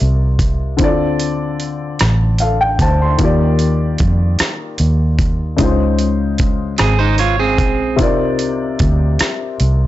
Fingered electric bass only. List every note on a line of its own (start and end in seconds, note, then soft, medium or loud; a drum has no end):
0.02 0.81 C2 medium
0.81 1.96 D2 medium
2.02 2.77 A1 medium
2.80 3.16 D2 medium
3.21 3.96 D#2 medium
4.01 4.36 F2 medium
4.41 muted fingered electric bass stroke soft
4.80 5.56 D#2 medium
5.60 6.76 C#2 medium
6.80 7.59 G#1 medium
7.59 8.00 A#1 medium
8.00 8.76 C2 medium
8.81 9.16 D2 medium
9.21 muted fingered electric bass stroke soft
9.61 9.87 C2 medium